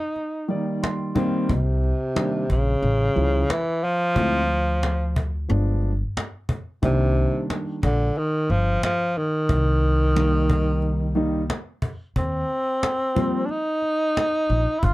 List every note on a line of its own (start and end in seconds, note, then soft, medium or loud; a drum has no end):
0.00 0.83 D#4 medium
0.16 cajon slap soft
0.48 1.14 D#3 medium
0.48 1.14 G3 medium
0.48 1.15 A#3 medium
0.48 1.44 D5 medium
0.48 cajon slap soft
0.83 1.14 C6 medium
0.83 cajon slap loud
1.15 1.49 D#3 medium
1.15 1.49 G3 medium
1.15 1.49 A#3 medium
1.15 1.50 C4 loud
1.15 1.47 D#5 medium
1.15 cajon bass medium
1.49 1.90 C2 loud
1.49 2.46 C3 medium
1.49 cajon bass loud
1.83 cajon slap soft
2.15 2.41 D#3 medium
2.15 2.41 G3 medium
2.15 2.41 A#3 medium
2.15 2.42 D4 medium
2.15 cajon slap loud
2.50 2.76 A#1 medium
2.50 3.52 C#3 loud
2.50 cajon bass medium
2.82 3.08 A1 loud
2.82 cajon slap soft
3.15 3.42 C#2 medium
3.15 3.41 F3 medium
3.15 3.41 G3 medium
3.15 3.41 C#4 soft
3.15 3.41 E4 medium
3.15 cajon slap soft
3.50 3.85 E3 loud
3.50 cajon slap loud
3.84 5.50 F3 loud
3.84 cajon slap soft
4.15 5.45 D2 medium
4.15 4.40 F3 medium
4.15 4.41 G#3 medium
4.15 4.41 C4 medium
4.15 4.41 E4 medium
4.15 cajon bass loud
4.50 cajon slap soft
4.83 cajon slap medium
5.16 cajon bass medium
5.49 6.01 G1 loud
5.49 5.90 F3 medium
5.49 5.90 G#3 medium
5.49 5.91 B3 medium
5.49 5.91 D4 medium
5.49 cajon slap soft
5.82 cajon slap soft
6.17 cajon slap loud
6.49 cajon bass medium
6.82 7.24 C2 loud
6.82 7.46 C3 loud
6.82 7.77 D#3 medium
6.82 7.77 G3 medium
6.82 7.77 A#3 medium
6.82 7.78 D4 medium
6.82 cajon bass loud
7.17 cajon slap soft
7.50 cajon slap medium
7.83 8.09 A#1 medium
7.83 8.19 D3 medium
7.83 cajon bass loud
8.16 8.52 D#3 medium
8.16 cajon slap soft
8.49 8.75 G1 medium
8.49 8.83 F3 medium
8.49 cajon slap soft
8.83 9.19 F3 loud
8.83 cajon slap loud
9.17 11.50 D#3 medium
9.17 cajon slap soft
9.49 11.45 C2 medium
9.49 cajon bass loud
9.83 cajon slap soft
10.15 11.10 D#3 medium
10.15 11.10 G3 medium
10.15 11.11 A#3 medium
10.15 11.11 D#4 medium
10.15 cajon slap loud
10.50 cajon bass loud
10.82 cajon slap soft
11.15 11.40 D#3 medium
11.15 11.41 G3 medium
11.15 11.41 A#3 medium
11.15 11.41 D#4 medium
11.15 cajon slap soft
11.50 cajon slap loud
11.82 cajon bass medium
12.16 12.42 D#2 medium
12.16 13.47 C4 medium
12.16 cajon bass medium
12.50 cajon slap soft
12.83 cajon slap loud
13.15 13.41 F3 medium
13.15 13.41 G3 medium
13.15 13.41 A#3 medium
13.15 13.42 C4 medium
13.15 cajon bass medium
13.46 13.52 D4 medium
13.46 cajon slap soft
13.51 14.80 D#4 loud
13.82 cajon slap soft
14.17 cajon slap loud
14.50 14.65 A#1 medium
14.50 cajon slap soft
14.79 14.94 G1 medium
14.79 14.85 E4 medium
14.79 cajon bass loud
14.84 14.94 F4 loud